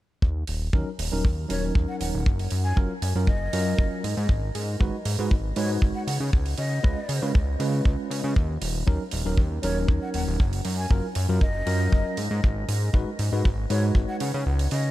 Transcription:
0.22 analog synth bass D#2, kick
0.47 analog synth bass D#1, open hi-hat
0.73 analog synth bass D#2, tine electric piano F#3 C#4 D#4 A#4, kick
0.99 analog synth bass D#1, open hi-hat
1.12 analog synth bass D#1, tine electric piano F#3 C#4 D#4 A#4
1.25 analog synth bass D#2, kick
1.49 analog synth bass D#1, tine electric piano F#3 C#4 D#4 A#4, flute C#5, open hi-hat
1.75 analog synth bass D#2, kick
1.88 flute F#5
2.00 analog synth bass D#1, flute F#5, open hi-hat
2.14 analog synth bass D#1
2.26 analog synth bass F#1, kick
2.39 open hi-hat
2.51 analog synth bass F#2, open hi-hat
2.64 flute G#5
2.76 analog synth bass F#1, tine electric piano F#3 C#4 F4 A#4, kick
3.02 analog synth bass F#2, open hi-hat
3.15 analog synth bass F#2, tine electric piano F#3 C#4 F4 A#4
3.27 analog synth bass F#1, flute D#5, kick
3.53 analog synth bass F#2, tine electric piano F#3 C#4 F4 A#4, open hi-hat
3.79 analog synth bass F#1, kick
4.04 analog synth bass G#2, open hi-hat
4.17 analog synth bass G#2
4.29 analog synth bass G#1, kick
4.55 analog synth bass G#2, open hi-hat
4.80 analog synth bass G#1, tine electric piano G#3 D#4 F#4 B4, kick
5.05 analog synth bass G#2, open hi-hat
5.19 analog synth bass G#2, tine electric piano G#3 D#4 F#4 B4
5.31 analog synth bass G#1, kick
5.56 analog synth bass G#2, tine electric piano G#3 D#4 F#4 B4, flute C#5, open hi-hat
5.82 analog synth bass G#1, kick
5.95 flute F#5
6.07 analog synth bass C#3, flute F#5, open hi-hat
6.20 analog synth bass C#3
6.33 analog synth bass C#2, kick
6.46 open hi-hat
6.58 analog synth bass C#3, flute D#5, open hi-hat
6.83 analog synth bass C#2, tine electric piano G#3 C#4 F4 B4, kick
7.09 analog synth bass C#3, open hi-hat
7.22 analog synth bass C#3, tine electric piano G#3 C#4 F4 B4
7.35 analog synth bass C#2, kick
7.59 analog synth bass C#3, tine electric piano G#3 C#4 F4 B4, open hi-hat
7.85 analog synth bass C#2, kick
8.10 analog synth bass C#3, open hi-hat
8.24 analog synth bass C#3
8.36 analog synth bass D#2, kick
8.62 analog synth bass D#1, open hi-hat
8.86 analog synth bass D#2, tine electric piano F#3 C#4 D#4 A#4, kick
9.11 analog synth bass D#1, open hi-hat
9.25 analog synth bass D#1, tine electric piano F#3 C#4 D#4 A#4
9.37 analog synth bass D#2, kick
9.62 analog synth bass D#1, tine electric piano F#3 C#4 D#4 A#4, flute C#5, open hi-hat
9.88 analog synth bass D#2, kick
10.02 flute F#5
10.14 analog synth bass D#1, flute F#5, open hi-hat
10.27 analog synth bass D#1
10.40 analog synth bass F#1, kick
10.53 open hi-hat
10.65 analog synth bass F#2, open hi-hat
10.78 flute G#5
10.90 analog synth bass F#1, tine electric piano F#3 C#4 F4 A#4, kick
11.15 analog synth bass F#2, open hi-hat
11.29 analog synth bass F#2, tine electric piano F#3 C#4 F4 A#4
11.41 analog synth bass F#1, flute D#5, kick
11.66 analog synth bass F#2, tine electric piano F#3 C#4 F4 A#4, open hi-hat
11.92 analog synth bass F#1, kick
12.17 analog synth bass G#2, open hi-hat
12.31 analog synth bass G#2
12.44 analog synth bass G#1, kick
12.68 analog synth bass G#2, open hi-hat
12.93 analog synth bass G#1, tine electric piano G#3 D#4 F#4 B4, kick
13.19 analog synth bass G#2, open hi-hat
13.32 analog synth bass G#2, tine electric piano G#3 D#4 F#4 B4
13.45 analog synth bass G#1, kick
13.70 analog synth bass G#2, tine electric piano G#3 D#4 F#4 B4, flute C#5, open hi-hat
13.95 analog synth bass G#1, kick
14.09 flute F#5
14.20 analog synth bass C#3, flute F#5, open hi-hat
14.34 analog synth bass C#3
14.46 analog synth bass C#2
14.59 open hi-hat
14.71 analog synth bass C#3, flute D#5, open hi-hat

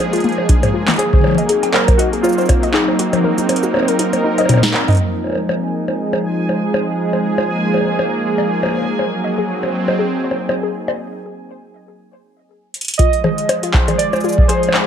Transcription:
Already playing: analog synth pad F3 G#3 A#3 D#4 G#4
0.13 synth arpeggio sound F4, closed hi-hat
0.16 closed hi-hat
0.20 closed hi-hat
0.24 synth arpeggio sound A#3, closed hi-hat
0.29 closed hi-hat
0.32 closed hi-hat
0.38 high bongo
0.49 synth arpeggio sound D4, kick, closed hi-hat
0.63 closed hi-hat, high tom, high bongo
0.74 synth arpeggio sound F4
0.88 synth arpeggio sound A#3, clap, closed hi-hat, high tom
0.91 closed hi-hat
0.94 closed hi-hat
0.96 synth keys G#4, closed hi-hat
0.99 analog synth pad F#3, closed hi-hat, high bongo
1.13 synth arpeggio sound C5, kick, high tom
1.16 high tom
1.19 high tom
1.21 high tom
1.24 high tom, high bongo
1.27 high tom, high bongo
1.30 high tom, high bongo
1.32 high tom, high bongo
1.35 synth arpeggio sound D#5, closed hi-hat, high bongo
1.40 analog synth pad C4
1.49 synth arpeggio sound G#4, closed hi-hat
1.63 closed hi-hat, high bongo
1.73 synth keys A#4, synth arpeggio sound C5, clap
1.88 kick, closed hi-hat, high bongo
1.97 synth keys F#4, synth arpeggio sound D#5, closed hi-hat
2.13 synth arpeggio sound G#4, closed hi-hat
2.22 synth keys F4, high bongo, cabasa
2.29 cabasa
2.32 cabasa
2.38 synth arpeggio sound C5, cabasa
2.41 cabasa
2.45 kick, closed hi-hat, high bongo, cabasa
2.63 synth arpeggio sound D#5, closed hi-hat
2.73 synth keys D#4, synth arpeggio sound G#4, clap
2.88 high bongo
2.99 synth arpeggio sound F#4, closed hi-hat
3.10 analog synth pad A#4, closed hi-hat, high tom, high bongo
3.24 synth arpeggio sound A#4
3.38 synth arpeggio sound D#4, closed hi-hat, cabasa
3.49 closed hi-hat, high bongo
3.56 closed hi-hat
3.63 synth arpeggio sound F#4, cabasa
3.74 high bongo
3.77 high bongo
3.80 high bongo
3.83 high bongo
3.85 synth arpeggio sound A#4, closed hi-hat, high bongo
3.99 synth arpeggio sound D#4, closed hi-hat
4.13 closed hi-hat, high bongo
4.24 synth arpeggio sound D#4
4.38 synth arpeggio sound D#5, closed hi-hat, high bongo
4.41 high bongo
4.45 closed hi-hat, mid tom, high bongo
4.49 synth arpeggio sound D#4, high bongo
4.54 high bongo
4.57 high bongo
4.63 synth arpeggio sound D#4, snare, closed hi-hat
4.74 clap, high bongo
4.88 synth arpeggio sound D#4, closed hi-hat, mid tom
4.90 closed hi-hat
4.92 closed hi-hat
4.95 closed hi-hat
4.97 analog synth pad F3, synth texture G#5, closed hi-hat
5.15 analog synth pad G#3
5.24 high bongo
5.27 high bongo
5.30 high bongo
5.33 high bongo
5.35 high bongo
5.49 high bongo
5.88 analog synth pad G#4, high bongo
6.13 high bongo
6.49 high bongo
6.74 high bongo
7.13 high bongo
7.35 analog synth pad A#3, high bongo
7.74 high bongo
7.78 high bongo
7.85 high bongo
7.88 high bongo
7.91 high bongo
7.94 high bongo
7.96 high bongo
7.99 high bongo
8.38 high bongo
8.63 high bongo
8.66 high bongo
8.71 high bongo
8.74 high bongo
8.78 high bongo
8.81 high bongo
8.85 high bongo
8.99 analog synth pad F#3, synth arpeggio sound C5, high bongo
9.24 synth arpeggio sound D#5
9.38 analog synth pad C4, synth arpeggio sound G#4
9.63 synth arpeggio sound C5, high bongo
9.88 synth arpeggio sound D#5, high bongo
9.99 synth arpeggio sound G#4
10.24 synth arpeggio sound C5
10.31 high bongo
10.49 synth arpeggio sound D#5, high bongo
10.63 synth arpeggio sound G#4
10.88 synth arpeggio sound C5, high bongo
12.74 closed hi-hat
12.81 closed hi-hat
12.85 closed hi-hat
12.88 closed hi-hat
12.91 closed hi-hat
12.94 closed hi-hat
12.96 synth keys D#5, kick, closed hi-hat
12.99 analog synth pad F3, synth arpeggio sound F4, closed hi-hat
13.08 analog synth pad G#3
13.13 closed hi-hat
13.24 synth arpeggio sound G#4, high tom, high bongo
13.38 closed hi-hat
13.43 analog synth pad G#4
13.49 synth arpeggio sound C5, closed hi-hat, high bongo
13.63 synth arpeggio sound F4, closed hi-hat
13.73 synth keys C5, kick, clap
13.88 synth arpeggio sound G#4, closed hi-hat, high tom, high bongo
13.98 synth keys D5, closed hi-hat
14.13 synth arpeggio sound C5, high bongo, cabasa
14.16 cabasa
14.20 cabasa
14.24 synth arpeggio sound F4, cabasa
14.29 cabasa
14.32 cabasa
14.38 kick
14.48 synth arpeggio sound G#4, synth keys C5, closed hi-hat, high bongo
14.63 closed hi-hat
14.69 high bongo
14.74 synth arpeggio sound C5, clap

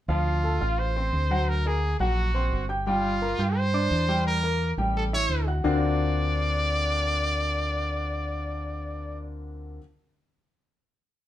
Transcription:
0.08 fingered electric bass D2, grand piano F3 F4 F5, trumpet F4
0.43 grand piano A3 A4 A5
0.61 fingered electric bass A1, grand piano F4 F5 F6
0.79 trumpet C5
0.96 grand piano C4 C5 C6
1.13 fingered electric bass D2
1.31 grand piano F#3 F#4 F#5
1.49 trumpet A#4
1.66 grand piano A#3 A#4 A#5, trumpet G#4
2.00 fingered electric bass A#1, grand piano F#3 F#4 F#5, trumpet F#4
2.34 grand piano C4 C5 C6
2.52 fingered electric bass G1
2.69 grand piano G4 G5 G6
2.87 grand piano G3 G4 G5, trumpet F4
3.22 grand piano A#3 A#4 A#5
3.38 fingered electric bass G2, grand piano G4 G5 G6
3.57 trumpet C5
3.74 grand piano D4 D5 D6
3.91 fingered electric bass E2
4.08 grand piano G3 G4 G5
4.27 trumpet A#4
4.43 grand piano A#3 A#4 A#5
4.77 fingered electric bass A1, grand piano G3 G4 G5
4.97 trumpet A4
5.13 grand piano E4 E5 E6, trumpet C#5
5.29 fingered electric bass D2
5.47 grand piano F#4 F#5 F#6
5.64 fingered electric bass D2, grand piano D3 A#3 C4 D4 F4 F#4, trumpet D5

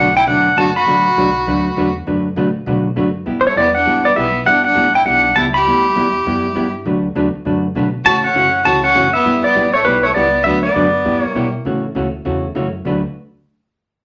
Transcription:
Already playing: upright bass B1, fiddle D4, pedal steel guitar F#5
0.16 fiddle E4, pedal steel guitar G5
0.26 upright bass E1, hollow-body jazz guitar D3 F#3 A3 D4 F#4 B4, fiddle D4, pedal steel guitar F#5
0.57 upright bass F#1, hollow-body jazz guitar D3 F#3 A3 D4 F#4 B4, fiddle F#4, pedal steel guitar A5
0.76 fiddle F#4, pedal steel guitar B5
0.86 upright bass A1, hollow-body jazz guitar D3 F#3 A3 D4 F#4 B4
1.16 upright bass B1, hollow-body jazz guitar D3 F#3 A3 D4 F#4 B4
1.47 upright bass D2, hollow-body jazz guitar D3 F#3 A3 D4 F#4 B4
1.76 upright bass E2, hollow-body jazz guitar D3 F#3 A3 D4 F#4 B4
2.07 upright bass F#2, hollow-body jazz guitar D3 F#3 A3 D4 F#4 B4
2.36 upright bass A2, hollow-body jazz guitar D3 F#3 A3 D4 F#4 B4
2.66 upright bass B2, hollow-body jazz guitar D3 F#3 A3 D4 F#4 B4
2.96 upright bass F#2, hollow-body jazz guitar D3 F#3 A3 D4 F#4 B4
3.26 upright bass G2, hollow-body jazz guitar G3 B3 E4 G4
3.41 fiddle G3, pedal steel guitar C5
3.46 fiddle A3, pedal steel guitar C#5
3.56 upright bass E2, hollow-body jazz guitar G3 B3 E4 G4, fiddle B3, pedal steel guitar D5
3.75 fiddle D4, pedal steel guitar F#5
3.85 upright bass A1, hollow-body jazz guitar G3 B3 E4 G4
4.05 fiddle B3, pedal steel guitar D5
4.15 upright bass B1, hollow-body jazz guitar G3 B3 E4 G4, fiddle B3, pedal steel guitar E5
4.46 upright bass G1, hollow-body jazz guitar G3 B3 E4 G4, fiddle D4, pedal steel guitar F#5
4.64 fiddle D4, pedal steel guitar F#5
4.75 upright bass A1, hollow-body jazz guitar G3 B3 E4 G4
4.95 fiddle E4, pedal steel guitar G5
5.05 upright bass B1, hollow-body jazz guitar G3 B3 E4 G4, fiddle D4, pedal steel guitar F#5
5.36 upright bass C#2, hollow-body jazz guitar G3 B3 E4 G4, fiddle E4, pedal steel guitar A5
5.54 fiddle G4, pedal steel guitar B5
5.66 upright bass D2, hollow-body jazz guitar G3 B3 E4 G4
5.95 upright bass E2, hollow-body jazz guitar G3 B3 E4 G4
6.26 upright bass F#2, hollow-body jazz guitar G3 B3 E4 G4
6.55 upright bass G2, hollow-body jazz guitar G3 B3 E4 G4
6.85 upright bass D2, hollow-body jazz guitar D3 F#3 A3 D4 F#4 B4
7.15 upright bass E2, hollow-body jazz guitar D3 F#3 A3 D4 F#4 B4
7.34 muted upright bass stroke
7.45 upright bass F#2, hollow-body jazz guitar D3 F#3 A3 D4 F#4 B4
7.75 upright bass B2, hollow-body jazz guitar D3 F#3 A3 D4 F#4 B4
8.05 upright bass A2, hollow-body jazz guitar C#3 E3 A3 C#4 F#4, fiddle F#4, pedal steel guitar A5
8.24 fiddle C#4, pedal steel guitar F#5
8.35 upright bass F#2, hollow-body jazz guitar C#3 E3 A3 C#4 F#4
8.65 upright bass C#2, hollow-body jazz guitar C#3 E3 A3 C#4 F#4, fiddle F#4, pedal steel guitar A5
8.83 fiddle C#4, pedal steel guitar F#5
8.95 upright bass F#1, hollow-body jazz guitar C#3 E3 A3 C#4 F#4
9.13 fiddle B3, pedal steel guitar E5
9.25 upright bass G1, hollow-body jazz guitar G3 B3 E4 G4
9.44 fiddle B3, pedal steel guitar D5, muted upright bass stroke
9.55 upright bass A1, hollow-body jazz guitar G3 B3 E4 G4
9.74 fiddle A3, pedal steel guitar C#5
9.85 upright bass B1, fiddle G3, hollow-body jazz guitar G3 B3 E4 G4, pedal steel guitar B4
10.03 fiddle A3, pedal steel guitar C#5
10.14 upright bass C#2, hollow-body jazz guitar G3 B3 E4 G4, fiddle B3, pedal steel guitar D5
10.44 upright bass D2, hollow-body jazz guitar D3 F#3 A3 D4 F#4 B4, fiddle B3, pedal steel guitar E5
10.63 fiddle B3, pedal steel guitar D5
10.75 upright bass F#2, hollow-body jazz guitar D3 F#3 A3 D4 F#4 B4
11.05 upright bass G2, hollow-body jazz guitar G3 B3 E4 G4
11.22 fiddle A#3, pedal steel guitar C#5, muted upright bass stroke
11.35 upright bass B2, hollow-body jazz guitar G3 B3 E4 G4
11.65 upright bass A2, hollow-body jazz guitar C#3 E3 A3 C#4 F#4
11.95 upright bass D2, hollow-body jazz guitar C#3 E3 A3 C#4 F#4
12.25 upright bass E2, hollow-body jazz guitar C#3 E3 A3 C#4 F#4
12.55 upright bass F#2, hollow-body jazz guitar C#3 E3 A3 C#4 F#4
12.85 upright bass D2, hollow-body jazz guitar D3 F#3 A3 D4 F#4 B4

